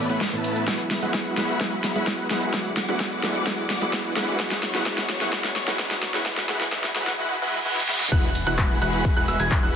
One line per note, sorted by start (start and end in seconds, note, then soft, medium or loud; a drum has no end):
0.00 0.18 A2 medium
0.00 0.18 E3 medium
0.00 0.18 A3 medium
0.00 0.18 B3 medium
0.00 0.64 A4 medium
0.00 0.66 B4 medium
0.00 0.18 C#5 medium
0.00 0.66 E5 medium
0.00 0.66 B5 medium
0.09 0.30 A1 loud
0.09 0.30 A3 medium
0.09 0.30 B3 medium
0.09 0.30 E4 medium
0.09 0.30 B4 medium
0.09 0.30 F#5 loud
0.09 closed hi-hat soft
0.09 shaker soft
0.21 kick loud
0.21 snare medium
0.21 open hi-hat medium
0.21 shaker soft
0.32 0.65 A1 medium
0.32 0.65 A2 medium
0.32 0.65 E3 medium
0.32 0.65 A3 medium
0.32 0.65 B3 medium
0.32 0.65 E4 medium
0.32 0.65 B4 medium
0.32 0.65 A5 medium
0.32 closed hi-hat soft
0.32 shaker soft
0.44 open hi-hat loud
0.44 shaker medium
0.56 closed hi-hat soft
0.56 shaker soft
0.67 1.00 E1 loud
0.67 0.99 F#3 medium
0.67 0.85 G#3 medium
0.67 1.00 B3 medium
0.67 0.85 E4 medium
0.67 1.00 E4 medium
0.67 0.85 F#4 medium
0.67 2.52 G#4 medium
0.67 1.00 G#4 medium
0.67 0.85 B4 medium
0.67 2.52 E5 medium
0.67 6.22 F#5 medium
0.67 0.85 F#5 medium
0.67 2.52 B5 loud
0.67 kick loud
0.67 snare medium
0.67 closed hi-hat medium
0.67 riser medium
0.67 shaker soft
0.79 closed hi-hat soft
0.79 shaker soft
0.91 snare medium
0.91 open hi-hat loud
0.91 shaker medium
1.02 1.35 E1 medium
1.02 1.34 F#3 medium
1.02 1.35 G#3 medium
1.02 1.34 B3 medium
1.02 1.35 E4 medium
1.02 1.35 F#4 medium
1.02 1.35 G#4 medium
1.02 1.35 B4 medium
1.02 1.35 F#5 medium
1.02 closed hi-hat soft
1.02 shaker soft
1.14 kick loud
1.14 snare medium
1.14 closed hi-hat medium
1.14 shaker soft
1.26 closed hi-hat soft
1.26 shaker soft
1.37 1.58 E1 medium
1.37 1.50 F#3 medium
1.37 1.59 G#3 medium
1.37 1.50 B3 medium
1.37 1.59 E4 medium
1.37 1.50 E4 medium
1.37 1.59 F#4 medium
1.37 1.50 G#4 medium
1.37 1.59 B4 medium
1.37 1.59 F#5 medium
1.37 snare medium
1.37 open hi-hat loud
1.37 shaker medium
1.49 closed hi-hat soft
1.49 shaker soft
1.60 1.93 E1 medium
1.60 1.92 F#3 medium
1.60 1.78 G#3 medium
1.60 1.93 B3 medium
1.60 1.78 E4 medium
1.60 1.93 E4 medium
1.60 1.78 F#4 medium
1.60 1.93 G#4 medium
1.60 1.78 B4 medium
1.60 1.78 F#5 loud
1.60 kick loud
1.60 snare medium
1.60 closed hi-hat medium
1.60 shaker soft
1.72 closed hi-hat soft
1.72 shaker soft
1.84 snare medium
1.84 open hi-hat loud
1.84 shaker medium
1.95 2.28 E1 medium
1.95 2.27 F#3 medium
1.95 2.28 G#3 medium
1.95 2.28 B3 medium
1.95 2.28 E4 medium
1.95 2.28 F#4 medium
1.95 2.28 G#4 medium
1.95 2.28 B4 medium
1.95 2.28 F#5 medium
1.95 closed hi-hat soft
1.95 shaker soft
2.07 kick loud
2.07 snare medium
2.07 closed hi-hat medium
2.07 shaker soft
2.19 closed hi-hat soft
2.19 shaker soft
2.30 2.51 E1 loud
2.30 2.43 F#3 medium
2.30 2.52 G#3 medium
2.30 2.43 B3 medium
2.30 2.52 E4 medium
2.30 2.43 E4 medium
2.30 2.52 F#4 medium
2.30 2.43 G#4 medium
2.30 2.52 B4 medium
2.30 2.52 F#5 medium
2.30 snare medium
2.30 open hi-hat loud
2.30 shaker medium
2.42 closed hi-hat soft
2.42 shaker soft
2.53 2.86 D2 medium
2.53 2.85 F#3 medium
2.53 2.71 G#3 medium
2.53 2.86 B3 medium
2.53 2.71 E4 medium
2.53 2.86 E4 medium
2.53 2.71 F#4 medium
2.53 2.86 G#4 medium
2.53 2.71 B4 medium
2.53 4.38 D5 medium
2.53 2.71 F#5 loud
2.53 4.38 D6 medium
2.53 kick loud
2.53 snare medium
2.53 closed hi-hat medium
2.53 shaker soft
2.65 closed hi-hat soft
2.65 shaker soft
2.77 snare medium
2.77 open hi-hat loud
2.77 shaker medium
2.88 3.21 D2 loud
2.88 3.20 F#3 medium
2.88 3.21 G#3 medium
2.88 3.21 B3 medium
2.88 3.21 E4 medium
2.88 3.21 F#4 medium
2.88 3.21 G#4 medium
2.88 3.21 B4 medium
2.88 3.21 F#5 medium
2.88 closed hi-hat soft
2.88 shaker soft
3.00 kick loud
3.00 snare medium
3.00 closed hi-hat medium
3.00 shaker soft
3.12 closed hi-hat soft
3.12 shaker soft
3.23 3.44 D2 medium
3.23 3.36 F#3 medium
3.23 3.45 G#3 medium
3.23 3.36 B3 medium
3.23 3.45 E4 medium
3.23 3.36 E4 medium
3.23 3.45 F#4 medium
3.23 3.36 G#4 loud
3.23 3.45 B4 medium
3.23 3.45 F#5 medium
3.23 snare medium
3.23 open hi-hat loud
3.23 shaker medium
3.35 closed hi-hat soft
3.35 shaker soft
3.46 3.79 D2 medium
3.46 3.78 F#3 medium
3.46 3.64 G#3 medium
3.46 3.79 B3 medium
3.46 3.64 E4 medium
3.46 3.79 E4 medium
3.46 3.64 F#4 medium
3.46 3.79 G#4 medium
3.46 3.64 B4 medium
3.46 3.64 F#5 loud
3.46 kick loud
3.46 snare medium
3.46 closed hi-hat medium
3.46 shaker soft
3.58 closed hi-hat soft
3.58 shaker soft
3.70 snare medium
3.70 open hi-hat loud
3.70 shaker medium
3.81 4.14 D2 loud
3.81 4.13 F#3 medium
3.81 4.14 G#3 medium
3.81 4.14 B3 medium
3.81 4.14 E4 medium
3.81 4.14 F#4 medium
3.81 4.14 G#4 medium
3.81 4.14 B4 medium
3.81 4.14 F#5 medium
3.81 closed hi-hat soft
3.81 shaker soft
3.93 kick loud
3.93 snare medium
3.93 open hi-hat medium
3.93 shaker soft
4.05 closed hi-hat soft
4.05 shaker soft
4.16 4.37 D2 loud
4.16 4.29 F#3 medium
4.16 4.38 G#3 medium
4.16 4.29 B3 medium
4.16 4.38 E4 medium
4.16 4.29 E4 medium
4.16 4.38 F#4 medium
4.16 4.29 G#4 medium
4.16 4.38 B4 medium
4.16 4.38 F#5 loud
4.16 snare medium
4.16 open hi-hat loud
4.16 shaker medium
4.28 closed hi-hat soft
4.28 shaker soft
4.39 4.72 F#3 medium
4.39 4.57 G#3 medium
4.39 4.72 B3 medium
4.39 4.57 E4 medium
4.39 4.72 E4 medium
4.39 4.57 F#4 medium
4.39 4.72 G#4 medium
4.39 4.57 B4 medium
4.39 6.24 C#5 medium
4.39 4.57 F#5 loud
4.39 6.24 C#6 loud
4.39 kick loud
4.39 snare medium
4.39 closed hi-hat medium
4.39 shaker soft
4.51 snare medium
4.51 closed hi-hat soft
4.51 shaker soft
4.63 snare medium
4.63 open hi-hat loud
4.63 shaker medium
4.74 4.84 F#1 loud
4.74 4.84 F#3 medium
4.74 4.84 G#3 medium
4.74 4.84 B3 medium
4.74 4.84 E4 medium
4.74 4.84 F#4 medium
4.74 4.85 G#4 medium
4.74 4.84 B4 medium
4.74 4.84 F#5 medium
4.74 snare medium
4.74 closed hi-hat soft
4.74 shaker soft
4.86 5.18 F#3 medium
4.86 5.03 G#3 loud
4.86 5.18 B3 medium
4.86 5.03 E4 medium
4.86 5.18 E4 medium
4.86 5.03 F#4 medium
4.86 5.19 G#4 medium
4.86 5.03 B4 medium
4.86 5.03 F#5 loud
4.86 kick loud
4.86 snare loud
4.86 closed hi-hat medium
4.86 shaker soft
4.98 snare medium
4.98 closed hi-hat soft
4.98 shaker soft
5.09 snare loud
5.09 open hi-hat loud
5.09 shaker medium
5.20 5.30 F#1 loud
5.20 5.31 F#3 medium
5.20 5.31 G#3 medium
5.20 5.31 B3 medium
5.20 5.31 E4 medium
5.20 5.31 F#4 medium
5.20 5.31 G#4 medium
5.20 5.31 B4 medium
5.20 5.31 F#5 medium
5.20 snare medium
5.20 closed hi-hat soft
5.20 shaker soft
5.32 5.65 F#3 medium
5.32 5.50 G#3 loud
5.32 5.65 B3 medium
5.32 5.50 E4 medium
5.32 5.50 F#4 medium
5.32 5.65 G#4 medium
5.32 5.50 B4 medium
5.32 5.50 F#5 loud
5.32 kick loud
5.32 snare loud
5.32 closed hi-hat medium
5.32 shaker soft
5.44 snare medium
5.44 closed hi-hat soft
5.44 shaker soft
5.56 snare medium
5.56 open hi-hat loud
5.56 shaker medium
5.67 5.77 F#1 loud
5.67 5.77 F#3 medium
5.67 5.77 G#3 medium
5.67 5.77 B3 medium
5.67 5.77 E4 medium
5.67 5.77 F#4 medium
5.67 5.78 G#4 medium
5.67 5.77 B4 medium
5.67 5.77 F#5 medium
5.67 snare medium
5.67 closed hi-hat soft
5.67 shaker soft
5.79 6.11 F#3 medium
5.79 5.96 G#3 medium
5.79 6.11 B3 medium
5.79 5.96 E4 medium
5.79 6.11 E4 medium
5.79 5.96 F#4 medium
5.79 6.12 G#4 medium
5.79 5.96 B4 medium
5.79 5.96 F#5 loud
5.79 kick loud
5.79 snare loud
5.79 closed hi-hat medium
5.79 shaker soft
5.91 snare medium
5.91 closed hi-hat soft
5.91 shaker soft
6.03 snare loud
6.03 open hi-hat loud
6.03 shaker medium
6.13 6.23 F#1 loud
6.13 6.24 F#3 medium
6.13 6.24 G#3 medium
6.13 6.24 B3 medium
6.13 6.24 E4 medium
6.13 6.24 F#4 medium
6.13 6.24 G#4 medium
6.13 6.24 B4 medium
6.13 6.24 F#5 loud
6.13 snare medium
6.13 closed hi-hat soft
6.13 shaker soft
6.25 6.47 F#3 medium
6.25 6.43 G#3 medium
6.25 6.47 B3 medium
6.25 6.43 E4 medium
6.25 6.47 E4 medium
6.25 6.43 F#4 medium
6.25 6.47 G#4 medium
6.25 7.18 B4 medium
6.25 6.43 B4 medium
6.25 7.18 E5 medium
6.25 6.43 F#5 loud
6.25 7.18 B5 medium
6.25 kick loud
6.25 snare medium
6.25 closed hi-hat medium
6.25 shaker soft
6.37 snare medium
6.37 closed hi-hat soft
6.37 shaker soft
6.48 6.70 A1 loud
6.48 6.70 F#3 medium
6.48 6.66 G#3 loud
6.48 6.70 B3 medium
6.48 6.66 E4 medium
6.48 6.70 E4 medium
6.48 6.66 F#4 medium
6.48 6.71 G#4 loud
6.48 6.66 B4 medium
6.48 6.66 F#5 loud
6.48 snare loud
6.48 open hi-hat loud
6.48 shaker medium
6.61 snare medium
6.61 closed hi-hat soft
6.61 shaker soft
6.72 6.93 F#3 medium
6.72 6.89 G#3 loud
6.72 6.94 B3 medium
6.72 6.89 E4 medium
6.72 6.94 E4 medium
6.72 6.89 F#4 medium
6.72 6.94 G#4 medium
6.72 6.89 B4 medium
6.72 6.89 F#5 loud
6.72 kick loud
6.72 snare loud
6.72 closed hi-hat medium
6.72 shaker soft
6.84 snare medium
6.84 closed hi-hat soft
6.84 shaker soft
6.95 7.16 A1 loud
6.95 7.17 F#3 medium
6.95 7.13 G#3 loud
6.95 7.17 B3 medium
6.95 7.13 E4 medium
6.95 7.17 E4 medium
6.95 7.13 F#4 medium
6.95 7.17 G#4 medium
6.95 7.13 B4 medium
6.95 7.13 F#5 loud
6.95 snare loud
6.95 open hi-hat loud
6.95 shaker medium
7.07 snare medium
7.07 closed hi-hat soft
7.07 shaker soft
7.19 7.36 G#3 loud
7.19 7.36 E4 medium
7.19 7.36 F#4 medium
7.19 7.36 B4 medium
7.19 7.36 F#5 loud
7.19 reverse cymbal medium
7.42 7.59 G#3 loud
7.42 7.59 E4 medium
7.42 7.59 F#4 medium
7.42 7.59 B4 medium
7.42 7.59 F#5 loud
7.65 7.82 G#3 loud
7.65 7.82 E4 medium
7.65 7.82 F#4 medium
7.65 7.82 B4 medium
7.65 7.82 F#5 loud
7.77 snare medium
7.89 8.06 G#3 loud
7.89 8.06 E4 medium
7.89 8.06 F#4 medium
7.89 8.06 B4 medium
7.89 8.06 F#5 loud
7.89 snare medium
8.00 snare medium
8.12 8.44 E1 medium
8.12 8.29 G#3 loud
8.12 8.29 E4 medium
8.12 8.29 F#4 medium
8.12 9.76 G#4 medium
8.12 8.29 B4 medium
8.12 9.76 E5 medium
8.12 9.76 F#5 medium
8.12 8.29 F#5 loud
8.12 9.76 B5 loud
8.12 8.29 F#6 loud
8.12 kick loud
8.12 closed hi-hat medium
8.12 crash loud
8.12 impact medium
8.12 shaker soft
8.35 open hi-hat loud
8.35 shaker medium
8.47 8.79 E1 loud
8.47 8.79 G#3 medium
8.47 8.79 E4 medium
8.47 8.79 F#4 medium
8.47 8.79 B4 medium
8.47 8.79 F#5 medium
8.47 8.79 F#6 medium
8.47 closed hi-hat medium
8.47 shaker soft
8.58 kick loud
8.58 clap loud
8.58 closed hi-hat medium
8.58 shaker soft
8.82 9.14 E1 loud
8.82 9.14 G#3 medium
8.82 9.14 E4 medium
8.82 9.14 F#4 medium
8.82 9.14 B4 medium
8.82 9.14 F#5 loud
8.82 9.14 F#6 medium
8.82 open hi-hat loud
8.82 shaker medium
8.93 closed hi-hat medium
8.93 shaker soft
9.05 kick loud
9.05 closed hi-hat medium
9.05 shaker soft
9.16 9.26 E1 loud
9.16 9.26 G#3 medium
9.16 9.26 E4 medium
9.16 9.26 F#4 medium
9.16 9.26 B4 medium
9.16 9.26 F#5 loud
9.16 9.26 F#6 loud
9.28 9.37 E1 loud
9.28 9.37 G#3 medium
9.28 9.37 E4 medium
9.28 9.37 F#4 medium
9.28 9.37 B4 medium
9.28 9.37 E5 loud
9.28 9.37 E6 medium
9.28 open hi-hat loud
9.28 shaker medium
9.40 9.61 E1 medium
9.40 9.60 G#3 medium
9.40 9.60 E4 medium
9.40 9.60 F#4 medium
9.40 9.60 B4 medium
9.40 9.60 G#5 loud
9.40 9.60 G#6 loud
9.40 closed hi-hat medium
9.40 shaker soft
9.51 kick loud
9.51 clap loud
9.51 closed hi-hat medium
9.51 shaker soft
9.63 9.76 E1 loud
9.63 9.76 G#3 medium
9.63 9.76 E4 medium
9.63 9.76 F#4 medium
9.63 9.76 B4 medium
9.63 9.76 F#5 medium
9.63 9.76 F#6 medium